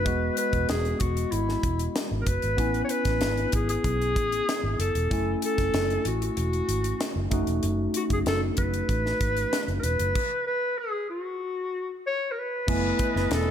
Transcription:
Already playing: B4
0.05 E1 G#3 B3 F#4 D#5, kick, closed hi-hat
0.37 B4, closed hi-hat
0.53 E1, kick, closed hi-hat
0.69 E1 G#4, snare, closed hi-hat
0.85 closed hi-hat
1.00 E1 F#4, kick, closed hi-hat
1.17 closed hi-hat
1.32 G#1 E4, closed hi-hat
1.49 snare
1.63 E1, kick, closed hi-hat
1.79 closed hi-hat
1.96 snare, closed hi-hat
2.11 G#1
2.21 A#4
2.26 F#1 B4, kick, closed hi-hat
2.42 G#1, closed hi-hat
2.57 A1 B3 C#4 E4 G#5, kick, closed hi-hat
2.74 closed hi-hat
2.84 C#5
2.89 B4, closed hi-hat
3.05 A1, kick, snare, closed hi-hat
3.21 G#1, snare, closed hi-hat
3.38 closed hi-hat
3.52 G#1 G#4, kick, closed hi-hat
3.69 G#4, closed hi-hat
3.84 B1, kick, closed hi-hat
4.02 closed hi-hat
4.16 A1, kick, closed hi-hat
4.32 closed hi-hat
4.49 snare, closed hi-hat
4.64 G#1
4.79 F#1 A4, closed hi-hat
4.95 E1, closed hi-hat
5.10 F#1 A3 C#4 E4 G#5, kick, closed hi-hat
5.42 A4, closed hi-hat
5.58 F#1, kick, snare, closed hi-hat
5.74 F#1, snare, closed hi-hat
5.90 closed hi-hat
6.05 A1 F#4, closed hi-hat
6.22 F#4, closed hi-hat
6.37 E1, closed hi-hat
6.53 closed hi-hat
6.68 G#1, closed hi-hat
6.84 closed hi-hat
7.01 snare, closed hi-hat
7.16 F#1
7.31 F#1 A3 C#4 D#4 F#4, kick, closed hi-hat
7.47 E1, closed hi-hat
7.63 F#1, closed hi-hat
7.94 F#4, closed hi-hat
8.10 F#1 G#4, kick, closed hi-hat
8.26 F#1 A4, snare, closed hi-hat
8.57 F#1 B4, kick, closed hi-hat
8.74 closed hi-hat
8.89 A1, kick, closed hi-hat
9.06 snare
9.21 G#1, kick, closed hi-hat
9.37 closed hi-hat
9.53 snare, closed hi-hat
9.68 F#1, closed hi-hat
9.79 A#4 B4
9.83 E1, closed hi-hat
10.00 F#1, closed hi-hat
10.15 kick, crash
10.47 B4
10.78 G#4
11.10 F#4
12.07 C#5
12.32 A#4
12.39 B4
12.67 F#1 A3 B3 E4 D#5 G#5, kick, crash
12.99 kick, closed hi-hat
13.16 F#1, snare
13.31 E1 A4, snare, closed hi-hat

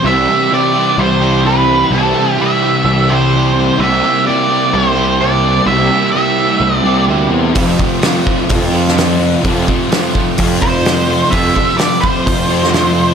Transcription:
0.02 C2 C3 E3 G3 C4
0.06 E4 G4 E5
0.28 G3 E4 G4
0.49 C3 E3 G3 C4
0.54 E4 G4 D5
0.74 G3 E4 G4
0.97 C2 C3 G3 C4 C5
1.20 G3 C4 E4 G4
1.24 G3
1.44 E3 G3 E4 G4 B4
1.65 G3 C4
1.90 C2 C3 E3 G3 E4 G4 A4
1.94 C4
2.14 G3 E4 G4
2.37 C3 E3 G3 E4 G4
2.41 C4 E5
2.62 G3 E4 G4
2.85 C2 C3 G3 C4
3.09 G3 C4 E4 G4 C5
3.13 G3
3.34 E3 G3 E4 G4
3.55 G3 C4
3.79 C2 C3 G3 A#3 E5
3.83 C4 E4 G4
4.04 A#3 E4 G4
4.25 C3 G3 A#3 E4 G4 D5
4.30 C4
4.50 A#3 E4 G4
4.73 C2 C3 G3 C4 C5
4.95 G3 A#3 C4 E4 G4
5.20 G3 A#3 E4 G4 D5
5.43 G3 C4
5.66 C2 C3 G3 A#3 C4 E5
5.70 E4 G4
5.91 E4 G4
5.95 A#3
6.12 C3 G3 E5
6.16 A#3 C4 E4 G4
6.38 E4 G4
6.43 A#3
6.59 C2 C3 G3 C4
6.77 D5
6.83 C2 C4 E4 G4
6.88 G3 A#3
7.07 D2 G3 A#3 E4
7.11 G4
7.30 E2 G3 C4
7.55 F2 C3 F3 A3 C4 F4, kick, open hi-hat
7.78 F3 A3 C4 F4, kick
8.00 F2 C3 F3 A3 C4, snare, open hi-hat
8.04 F3 F4
8.24 F3 A3 C4 F4, kick
8.48 F2 C3 F3, kick, open hi-hat
8.71 C3 F3 A3 C4 F4
8.75 F3
8.88 snare
8.95 F3 A3 C4 F4, snare, open hi-hat
9.19 C3 F3
9.42 F2 C3 F3 A3, kick, open hi-hat
9.46 C4 F4
9.67 F3 A3 C4 F4, kick
9.88 F2 C3 F3 A3, open hi-hat
9.93 C4 F4, snare
10.13 A3 C4 F4, kick
10.18 F3
10.37 F2 C3 F3, kick, open hi-hat
10.59 F3 A3 C4 F4 C5, kick
10.66 C3
10.83 F3 A3 C4 F4, snare, open hi-hat
11.08 C3 F3
11.30 F2 C3 F3 A3 C4 F4 E5, kick, open hi-hat
11.34 F3
11.52 F3 A3 C4 F4
11.56 kick
11.75 F2 F3 A3 C4 F4 D5, open hi-hat
11.79 C3 F3, snare
11.99 F3 A3 C4 F4 C5
12.04 kick
12.24 F2 C3 F3, kick, open hi-hat
12.47 C3 F3 A3 C4 F4
12.63 snare
12.72 F3 A3 C4 F4, snare, open hi-hat
12.94 C3 F3

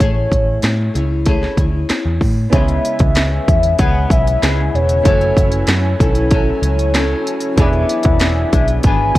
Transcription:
Already playing: C#5
0.00 A1 A3 C#4 E4 G#4, kick, closed hi-hat
0.31 A1, kick, closed hi-hat
0.62 A2, snare, closed hi-hat
0.94 C#2 C#4 E4 G#4, closed hi-hat
1.26 A3 C#4 E4 G#4, kick, closed hi-hat
1.43 snare
1.57 D2 C#4 E4 G#4, kick, closed hi-hat
1.89 muted picked electric bass stroke, snare, closed hi-hat
2.05 E2
2.21 A2, kick, open hi-hat
2.50 C#2 C#3 G#3 B3 C#4 E4 G#4 B4 E5 G#5, kick, closed hi-hat
2.54 B3 E4 G#4 C#5
2.69 closed hi-hat
2.85 closed hi-hat
2.99 C#2, kick, closed hi-hat
3.15 snare, closed hi-hat
3.48 E2, kick, closed hi-hat
3.63 closed hi-hat
3.78 C#2 G#3 B3 E4 G#4 F#5, kick, closed hi-hat
4.10 B1 E5, kick, closed hi-hat
4.28 closed hi-hat
4.42 C#2 G#3 B3 E4 G#4, snare, closed hi-hat
4.75 E1 C#5, closed hi-hat
4.89 closed hi-hat
5.03 F#1 F#3 A3 C#4 E4 F#4 A4, kick, closed hi-hat
5.08 C#5
5.21 closed hi-hat
5.37 F#1, kick, closed hi-hat
5.52 closed hi-hat
5.67 F#2, snare, closed hi-hat
5.99 B1 C#4 E4 A4, kick, closed hi-hat
6.15 closed hi-hat
6.31 F#3 C#4 E4 A4, kick, closed hi-hat
6.62 C#2, closed hi-hat
6.79 closed hi-hat
6.94 F#3 C#4 E4 A4, snare, closed hi-hat
7.27 closed hi-hat
7.41 closed hi-hat
7.56 E1 E3 B3 D4 E4 F#4 G#4 E5, kick, closed hi-hat
7.60 G#4 D5
7.73 closed hi-hat
7.89 closed hi-hat
8.03 E1, kick, closed hi-hat
8.20 snare, closed hi-hat
8.52 B1 B3 D4 G#4, kick, closed hi-hat
8.68 closed hi-hat
8.83 G#1 E3 B3 D4 G#4 G#5, kick, closed hi-hat
9.15 F#1, kick, closed hi-hat

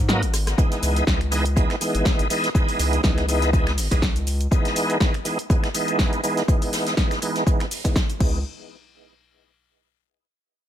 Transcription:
Already playing: G#2
0.08 F#3 A#3 B3 D#4, snare, closed hi-hat, shaker
0.23 G#1, closed hi-hat, shaker
0.34 cross-stick, closed hi-hat, open hi-hat, shaker
0.47 cross-stick, snare, closed hi-hat, shaker
0.58 E3 G#3 B3 D#4, kick, closed hi-hat, shaker
0.71 snare, closed hi-hat, shaker
0.83 C#2, closed hi-hat, open hi-hat, shaker
0.96 closed hi-hat, shaker
1.07 C#2 E3 G#3 B3 D#4, kick, snare, closed hi-hat, shaker
1.21 finger snap, closed hi-hat
1.31 E3 G#3 B3 D#4, closed hi-hat, open hi-hat, shaker
1.45 closed hi-hat, shaker
1.56 E3 G#3 B3 D#4, kick, closed hi-hat, shaker
1.70 finger snap, snare, closed hi-hat
1.81 E3 G#3 B3 D#4, closed hi-hat, open hi-hat, shaker
1.95 G#1, closed hi-hat, shaker
2.05 kick, snare, closed hi-hat, shaker
2.19 G#1, closed hi-hat, shaker
2.30 E3 G#3 B3 D#4, closed hi-hat, open hi-hat, shaker
2.44 snare, closed hi-hat, shaker
2.54 E3 G#3 B3 D#4, kick, closed hi-hat, shaker
2.69 open hi-hat, shaker
2.79 C#2, closed hi-hat, open hi-hat, shaker
2.93 closed hi-hat, shaker
3.03 C#2 E3 G#3 B3 D#4, kick, snare, closed hi-hat, shaker
3.17 finger snap, snare, closed hi-hat
3.28 E3 G#3 B3 D#4, closed hi-hat, open hi-hat, shaker
3.42 snare, closed hi-hat, shaker
3.53 E3 G#3 B3 D#4, kick, closed hi-hat, shaker
3.67 finger snap, snare, closed hi-hat
3.78 G#1, open hi-hat, shaker
3.91 B1 E3 G#3 B3 D#4, kick, snare, closed hi-hat, shaker
4.02 kick, snare, closed hi-hat, shaker
4.16 C#2, closed hi-hat, shaker
4.27 closed hi-hat, open hi-hat, shaker
4.41 closed hi-hat, shaker
4.51 E3 G#3 B3 D#4, kick, closed hi-hat, shaker
4.65 snare, closed hi-hat, shaker
4.76 closed hi-hat, open hi-hat, shaker
4.90 closed hi-hat, shaker
5.00 E3 G#3 B3 D#4, kick, snare, closed hi-hat, shaker
5.14 finger snap, closed hi-hat
5.25 E3 G#3 B3 D#4, closed hi-hat, open hi-hat, shaker
5.39 closed hi-hat, shaker
5.49 E3 G#3 B3 D#4, kick, closed hi-hat, shaker
5.63 finger snap, snare, closed hi-hat
5.74 E3 G#3 B3 D#4, closed hi-hat, open hi-hat, shaker
5.88 closed hi-hat, shaker
5.99 kick, snare, closed hi-hat, shaker
6.13 closed hi-hat, shaker
6.23 E3 G#3 B3 D#4, closed hi-hat, open hi-hat, shaker
6.37 snare, closed hi-hat, shaker
6.48 E3 G#3 B3 D#4, kick, closed hi-hat, shaker
6.62 open hi-hat, shaker
6.73 snare, closed hi-hat, open hi-hat, shaker
6.87 snare, closed hi-hat, shaker
6.97 E3 G#3 B3 D#4, kick, snare, closed hi-hat, shaker
7.11 finger snap, snare, closed hi-hat, shaker
7.22 E3 G#3 B3 D#4, closed hi-hat, open hi-hat, shaker
7.35 snare, closed hi-hat, shaker
7.46 E3 G#3 B3 D#4, kick, closed hi-hat, shaker
7.60 finger snap, snare, closed hi-hat
7.71 open hi-hat, shaker
7.84 E3 G#3 B3 D#4, kick, snare, closed hi-hat, shaker
7.96 kick, snare, closed hi-hat, shaker
8.10 closed hi-hat, shaker
8.19 C#2 E3 G#3 B3 D#4, kick, crash

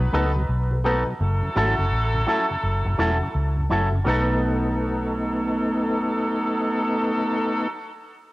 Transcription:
Already playing: F#3 D#4 B4
0.00 B1
0.13 C#2 F#3 A3 B3 D#4 A4 B4
0.35 B2 F#3
0.49 B1
0.71 B2 F#3 A4 B4
0.84 F#3 A3 B3 D#4 A4 B4
1.06 B2 F#3
1.20 F#1 F#3 E4 A4
1.42 F#2 C#3
1.56 G#1 F#3 A3 C#4 E4 F#4 A4
1.78 F#1 F#2 C#3
1.91 A1
2.14 F#2 C#3
2.27 F#3 A3 C#4 E4 F#4 A4
2.49 F#2 C#3
2.63 F#1
2.85 F#1 F#2 C#3
2.98 E1 F#3 A3 C#4 E4 F#4 A4
3.21 F#2 C#3
3.35 C#2
3.56 F#2 C#3
3.69 F#1 F#3 A3 C#4 E4 F#4 A4
3.92 F#2 C#3
4.04 B1 F#3 A3 B3 D#4 A4 B4
4.10 A4

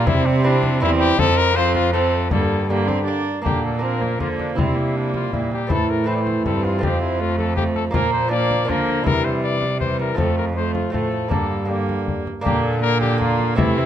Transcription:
0.05 C3 G3 C4 E4, frame drum
0.26 C4
0.44 C4 D4 E4
0.63 frame drum
0.80 E2 G3 C4 E4
1.00 G4
1.18 F2 F3 C4 A4, frame drum
1.37 A#4
1.55 F3 A3 C4 F4 C5
1.75 F4, frame drum
1.93 F3 A3 C4 F4 A4
2.31 G2 D3 A#3 A4, frame drum
2.68 D3 A#3 D4 G4
2.87 C4, frame drum
3.05 A#3 D4
3.42 A#2 D3 A#3 D4 G4
3.46 frame drum
3.65 A4
3.79 A#3 C4 D4 A#4
3.83 F3
4.01 A#3, frame drum
4.20 D3 F3 A#3 F4, frame drum
4.39 D4, frame drum
4.55 C3 G3 C4 E4, frame drum
4.76 A#3
4.97 D4
5.14 F4, frame drum
5.32 A#2 G3 E4, frame drum
5.52 G4, frame drum
5.67 A2 E3 A3 C4 E4, frame drum
5.71 A3 A4
5.90 A#4
6.04 E3 A3 C4 E4 C5
6.15 D5
6.21 C5
6.27 frame drum
6.44 G2 C4 A4, frame drum
6.64 F4, frame drum
6.79 F2 A3 C4 F4
6.83 F2 F3 C4 G4, frame drum
7.01 E4
7.19 F3 A3 F4
7.38 A4, frame drum
7.56 F3 A3 G4, frame drum
7.76 A4, frame drum
7.91 A#2 A#3 F4 A#4, frame drum
7.95 F3
8.13 C5
8.28 F3 A#3 D4 F4 D5
8.51 frame drum
8.65 D3 F3 A#3 D4 F4
8.70 D3 A#4, frame drum
8.88 frame drum
9.04 C3 E3 G3 E4 A#4, frame drum
9.25 C5
9.44 D5
9.62 frame drum
9.80 E3 G3 C5, frame drum
10.00 A#4, frame drum
10.15 F2 F3 A3 C4 F4 A4, frame drum
10.19 A3
10.38 A#4
10.56 F3 A3 C5
10.74 F4, frame drum
10.90 A2 F3 A3 C4 F4 A4, frame drum
11.12 frame drum
11.28 G2 D3 A#3 D4 A4, frame drum
11.65 A#3 D4 G4
11.70 D3 A#3
11.89 frame drum
12.08 frame drum
12.27 frame drum
12.41 A#2 A#3 D4 G4
12.45 D3 A#3, frame drum
12.63 A4
12.82 A#3 A#4
13.01 G4, frame drum
13.18 A#3 D4 F4, frame drum
13.39 frame drum
13.55 C3 E3 A3 C4 E4, frame drum
13.77 C4

